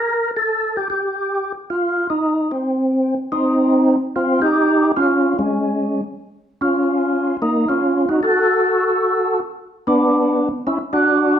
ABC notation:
X:1
M:4/4
L:1/8
Q:"Swing" 1/4=147
K:Cdor
V:1 name="Tonewheel organ"
B A2 G G3 z | F2 E2 C3 z | [K:Cm] [CE]3 z [CF] [EG]3 | [_DF]2 [A,D]3 z3 |
[_DF]4 [B,E] [DF]2 [E_G] | [_G=A]6 z2 | [=B,D]3 z [_D=E] [=D^F]3 |]